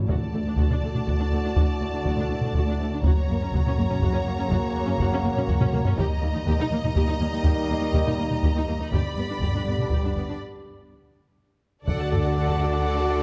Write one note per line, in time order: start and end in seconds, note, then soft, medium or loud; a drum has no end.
0.08 0.13 D2 medium
0.08 2.98 A2 medium
0.08 2.99 A3 medium
0.08 2.99 D4 medium
0.08 0.14 F#4 medium
0.08 2.99 F#4 medium
0.08 2.99 D5 medium
0.08 2.99 A5 medium
0.08 taiko medium
0.33 0.38 D2 soft
0.33 0.38 D2 medium
0.33 0.38 A3 soft
0.45 0.50 D2 soft
0.45 0.52 D4 soft
0.57 0.62 D2 medium
0.57 0.63 D2 medium
0.57 0.62 F#4 medium
0.57 taiko medium
0.69 0.74 D2 soft
0.69 0.76 D4 soft
0.69 taiko low-mid soft
0.82 0.87 D2 soft
0.82 0.88 D2 soft
0.82 0.89 A3 soft
0.94 0.99 D2 soft
0.94 0.99 D4 soft
0.94 taiko low-mid soft
1.06 1.11 D2 medium
1.06 1.11 F#4 medium
1.06 taiko medium
1.18 1.23 D2 soft
1.18 1.24 D4 soft
1.31 1.36 D2 soft
1.31 1.37 A3 medium
1.44 1.48 D2 medium
1.44 1.49 D4 medium
1.55 1.60 D2 medium
1.55 1.61 D2 medium
1.55 1.62 F#4 medium
1.55 taiko loud
1.80 1.85 D2 medium
1.80 1.86 D2 medium
1.80 1.86 A3 soft
1.92 1.97 D2 medium
1.92 1.99 D4 soft
2.03 2.09 D2 medium
2.03 2.10 D2 medium
2.03 2.11 F#4 medium
2.03 taiko medium
2.16 2.21 D2 medium
2.16 2.24 D4 medium
2.16 taiko low-mid soft
2.28 2.33 D2 soft
2.28 2.34 D2 medium
2.33 2.38 A3 medium
2.41 2.46 D2 soft
2.41 2.49 D4 medium
2.41 taiko low-mid soft
2.53 2.58 D2 medium
2.53 taiko medium
2.58 2.62 F#4 medium
2.66 2.71 D2 medium
2.70 2.74 D4 medium
2.79 2.83 D2 medium
2.79 2.84 D2 medium
2.79 2.86 A3 medium
2.90 2.95 D2 medium
2.90 2.98 D4 medium
3.02 3.08 F#1 medium
3.02 3.08 F#2 medium
3.02 5.93 C#3 medium
3.02 5.93 F#3 medium
3.02 5.94 A#3 medium
3.02 5.94 F#4 medium
3.02 5.93 C#5 medium
3.02 5.96 A#5 medium
3.02 taiko medium
3.06 3.11 F#4 medium
3.27 3.33 F#1 medium
3.27 3.32 F#2 medium
3.27 3.35 A#3 medium
3.40 3.45 F#2 medium
3.40 3.47 C#4 medium
3.53 3.57 F#1 medium
3.53 3.58 F#2 medium
3.53 3.59 F#4 medium
3.53 taiko medium
3.65 3.70 F#2 medium
3.65 3.72 C#4 medium
3.65 taiko low-mid soft
3.77 3.82 F#1 medium
3.77 3.82 F#2 medium
3.77 3.82 A#3 medium
3.90 3.95 F#2 medium
3.90 3.94 C#4 medium
3.90 taiko low-mid medium
4.01 4.06 F#1 medium
4.01 4.07 F#2 medium
4.01 4.07 F#4 medium
4.01 taiko medium
4.13 4.19 F#2 medium
4.13 4.18 C#4 medium
4.25 4.30 F#1 medium
4.25 4.31 F#2 medium
4.25 4.31 A#3 medium
4.38 4.44 F#2 medium
4.38 4.43 C#4 medium
4.49 4.54 F#1 medium
4.49 4.55 F#2 medium
4.49 4.56 F#4 medium
4.49 taiko medium
4.74 4.80 F#1 medium
4.74 4.79 F#2 medium
4.74 4.80 A#3 medium
4.86 4.91 F#2 medium
4.86 4.91 C#4 medium
4.98 5.03 F#1 loud
4.98 5.03 F#2 medium
4.98 5.05 F#4 medium
4.98 taiko medium
5.10 5.15 F#2 medium
5.10 5.17 C#4 medium
5.10 taiko low-mid soft
5.23 5.28 F#1 medium
5.23 5.28 F#2 medium
5.23 5.28 A#3 medium
5.35 5.40 F#2 medium
5.35 5.41 C#4 medium
5.35 taiko low-mid soft
5.48 5.53 F#1 medium
5.48 5.53 F#2 medium
5.48 5.53 F#4 medium
5.48 taiko medium
5.60 5.65 F#2 medium
5.60 5.65 C#4 medium
5.60 taiko low-mid medium
5.72 5.77 F#1 medium
5.72 5.77 F#2 medium
5.72 5.78 A#3 medium
5.72 taiko low-mid medium
5.85 5.90 F#2 medium
5.85 5.90 C#4 medium
5.85 taiko low medium
5.96 6.02 D#2 medium
5.96 8.75 D#3 medium
5.96 8.75 G3 medium
5.96 8.75 A#3 loud
5.96 8.75 D#4 loud
5.96 6.03 G4 medium
5.96 8.91 D#5 medium
5.96 8.87 A#5 medium
5.96 taiko loud
6.21 6.26 D#2 medium
6.21 6.28 A#3 medium
6.34 6.39 D#2 medium
6.34 6.39 D#4 medium
6.46 6.51 D#2 medium
6.46 6.52 G4 loud
6.46 taiko medium
6.58 6.63 D#2 medium
6.58 6.65 D#4 medium
6.58 taiko low-mid soft
6.71 6.76 D#2 medium
6.71 6.77 A#3 medium
6.84 6.89 D#2 medium
6.84 6.88 D#4 medium
6.84 taiko low-mid soft
6.95 7.00 D#2 medium
6.95 7.01 D#2 medium
6.95 7.01 G4 medium
6.95 taiko medium
7.08 7.13 D#2 medium
7.08 7.13 D#4 medium
7.19 7.24 D#2 medium
7.19 7.25 D#2 medium
7.19 7.25 A#3 medium
7.32 7.37 D#2 medium
7.32 7.37 D#4 medium
7.43 7.49 D#2 medium
7.43 7.50 D#2 medium
7.43 7.50 G4 medium
7.43 taiko loud
7.69 7.74 D#2 medium
7.69 7.75 D#2 medium
7.69 7.75 A#3 medium
7.80 7.86 D#2 medium
7.80 7.87 D#4 medium
7.92 7.97 D#2 medium
7.92 8.00 D#2 medium
7.92 7.98 G4 medium
7.92 taiko medium
8.06 8.11 D#2 medium
8.06 8.11 D#4 medium
8.06 taiko low-mid soft
8.17 8.22 D#2 soft
8.17 8.24 D#2 medium
8.17 8.24 A#3 medium
8.30 8.36 D#2 soft
8.30 8.36 D#4 medium
8.30 taiko low-mid soft
8.43 8.47 D#2 medium
8.43 8.49 D#2 medium
8.43 8.49 G4 medium
8.43 taiko medium
8.55 8.60 D#2 medium
8.55 8.62 D#4 medium
8.67 8.72 D#2 medium
8.67 8.73 A#3 medium
8.80 8.85 D#2 medium
8.80 8.85 D#4 medium
8.91 8.97 G1 medium
8.91 8.96 G2 medium
8.91 10.35 D3 medium
8.91 10.35 G3 medium
8.91 10.35 B3 medium
8.91 10.36 G4 medium
8.91 8.98 G4 medium
8.91 10.37 D5 medium
8.91 10.39 B5 medium
8.91 taiko medium
9.16 9.22 G1 soft
9.16 9.21 G2 medium
9.16 9.23 B3 medium
9.28 9.33 G2 medium
9.28 9.35 D4 soft
9.40 9.45 G1 medium
9.40 9.46 G2 medium
9.40 9.47 G4 medium
9.40 taiko medium
9.54 9.58 G2 soft
9.54 9.60 D4 medium
9.54 taiko low-mid soft
9.66 9.71 G1 soft
9.66 9.71 G2 soft
9.66 9.73 B3 soft
9.78 9.84 G2 soft
9.78 9.85 D4 soft
9.78 taiko low-mid soft
9.90 9.95 G1 medium
9.90 9.96 G2 medium
9.90 9.97 G4 medium
9.90 taiko medium
10.03 10.07 G2 soft
10.03 10.09 D4 soft
10.14 10.19 G1 soft
10.14 10.20 G2 soft
10.14 10.22 B3 soft
10.28 10.33 G2 soft
10.28 10.34 D4 soft
11.85 13.23 D2 medium
11.85 13.23 D3 medium
11.85 13.23 D4 medium
11.85 13.23 F#4 medium
11.85 13.23 A4 medium
11.85 11.99 A4 medium
11.85 13.23 D5 medium
11.85 11.97 D5 medium
11.85 13.23 D5 medium
11.85 11.98 F#5 medium
11.85 taiko medium
11.89 13.23 D3 medium
11.89 13.23 A3 medium
11.98 12.12 F#4 medium
11.98 12.11 F#5 medium
11.98 12.11 A5 medium
12.10 12.24 A4 medium
12.10 12.23 D5 medium
12.10 12.23 F#5 medium
12.10 taiko low medium
12.23 12.36 F#4 medium
12.23 12.35 F#5 medium
12.23 12.36 A5 medium
12.36 12.49 A4 medium
12.36 12.47 D5 soft
12.36 12.48 F#5 medium
12.47 12.60 F#5 soft
12.47 12.60 A5 soft
12.47 taiko low medium
12.51 12.62 F#4 medium
12.59 12.72 D5 medium
12.59 12.72 F#5 medium
12.63 12.74 A4 soft
12.72 12.86 F#4 medium
12.72 12.85 F#5 medium
12.72 12.84 A5 soft
12.84 12.97 A4 soft
12.84 12.96 D5 medium
12.84 12.96 F#5 medium
12.96 13.11 F#4 soft
12.96 13.09 F#5 medium
12.96 13.09 A5 medium
13.08 13.22 A4 medium
13.08 13.22 D5 medium
13.08 13.21 F#5 medium